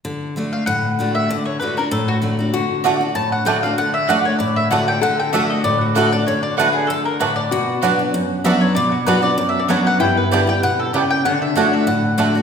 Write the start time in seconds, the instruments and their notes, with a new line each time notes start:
0.05 steel-string acoustic guitar D3
0.36 steel-string acoustic guitar D3 A3 D4 F#4
0.53 mandolin F5
0.66 steel-string acoustic guitar A2, mandolin F#5
0.99 steel-string acoustic guitar D3 A3 D4 F#4
1.15 mandolin E5
1.29 steel-string acoustic guitar D3, mandolin D5
1.46 mandolin C#5
1.60 steel-string acoustic guitar D3 A3 D4 F#4, mandolin B4
1.77 steel-string acoustic guitar D4 F#4, mandolin A#4
1.91 steel-string acoustic guitar A2, mandolin A4
2.08 mandolin F#4
2.22 steel-string acoustic guitar D3 A3 D4 F#4
2.39 steel-string acoustic guitar D4 F#4
2.53 steel-string acoustic guitar D3, resonator guitar played with a steel bar F#4
2.84 steel-string acoustic guitar D3 A3 D4 F#4, mandolin A3 F#4 D5 F#5, five-string banjo A3 D4
3.01 steel-string acoustic guitar D4 F#4
3.15 steel-string acoustic guitar A2, mandolin A5
3.32 mandolin F#5
3.45 steel-string acoustic guitar D3 A3 D4 F#4, mandolin A3 F#4 D5 F#5 G5, five-string banjo A3 D4
3.63 steel-string acoustic guitar D4 F#4, mandolin F5
3.78 steel-string acoustic guitar D3, mandolin F#5
3.94 mandolin E5
4.07 steel-string acoustic guitar D3 A3 D4 F#4, mandolin A3 F#4 D5 F#5, five-string banjo A3 D4
4.25 mandolin C#5
4.39 steel-string acoustic guitar A2, mandolin D5
4.56 mandolin E5
4.70 steel-string acoustic guitar D3 A3 D4 F#4, mandolin A3 F#4 D5 F#5, five-string banjo A3 D4
4.88 mandolin G5
5.01 steel-string acoustic guitar D3, resonator guitar played with a steel bar A4, mandolin F#5
5.20 mandolin G5
5.33 steel-string acoustic guitar D3 A3 D4 F#4, mandolin A3 F#4 D5 E5 F#5, five-string banjo A3 D4
5.50 mandolin D#5
5.64 steel-string acoustic guitar A2, mandolin D5
5.81 mandolin F#4
5.95 steel-string acoustic guitar D3 A3 D4 F#4, mandolin A3 F#4 A4 D5 F#5, five-string banjo A3 D4
6.12 steel-string acoustic guitar D4 F#4, mandolin D5
6.27 steel-string acoustic guitar D3, mandolin C#5
6.43 mandolin D5
6.57 steel-string acoustic guitar D3 A3 D4 F#4, mandolin A3 F#4 B4 D5 F#5, five-string banjo A3 D4
6.73 mandolin G#4
6.87 steel-string acoustic guitar D3, mandolin A4
7.05 mandolin A#4
7.20 steel-string acoustic guitar A2, mandolin A3 F#4 B4 D5 F#5, five-string banjo A3 D4
7.36 mandolin D5
7.51 steel-string acoustic guitar B2, resonator guitar played with a steel bar F#4
7.82 steel-string acoustic guitar F#3 B3 D4 F#4, mandolin B3 F#4 D5 F#5, five-string banjo B3 D4
7.99 steel-string acoustic guitar D4 F#4
8.14 steel-string acoustic guitar F#2
8.44 steel-string acoustic guitar F#3 B3 D4 F#4, mandolin B3 F#4 D5 E5 F#5, five-string banjo B3 D4
8.61 mandolin C#5
8.75 steel-string acoustic guitar B2, mandolin D5
8.92 mandolin F#4
9.06 steel-string acoustic guitar F#3 B3 D4 F#4, mandolin B3 F#4 B4 D5 F#5, five-string banjo B3 D4
9.22 steel-string acoustic guitar D4 F#4, mandolin D5
9.38 steel-string acoustic guitar F#2, mandolin D5
9.49 mandolin E5
9.59 mandolin D5
9.68 steel-string acoustic guitar F#3 B3 D4 F#4, mandolin B3 F#4 C#5 D5 F#5, five-string banjo B3 D4
9.87 mandolin F#5
10.00 steel-string acoustic guitar G2, resonator guitar played with a steel bar E4, mandolin G5
10.17 mandolin B4
10.31 steel-string acoustic guitar D3 G3 B3 G4, five-string banjo G3 B3 D4, mandolin B3 G4 D5 G5
10.47 steel-string acoustic guitar B3 G4, mandolin G5
10.63 steel-string acoustic guitar B2, mandolin F#5
10.79 mandolin A4
10.93 steel-string acoustic guitar C#3, five-string banjo G3 B3 D4, mandolin B3 G4 D5 G5
11.11 mandolin G5
11.25 steel-string acoustic guitar D3, resonator guitar played with a steel bar D4, mandolin F#5
11.42 mandolin E5
11.56 steel-string acoustic guitar D3 A3 D4 F#4, mandolin A3 F#4 C#5 D5 F#5, five-string banjo A3 D4
11.73 mandolin E5
11.87 steel-string acoustic guitar A2, mandolin F#5
12.18 steel-string acoustic guitar D3 A3 D4 F#4, mandolin A3 F#4 D5 F#5, five-string banjo A3 D4
12.35 steel-string acoustic guitar D4 F#4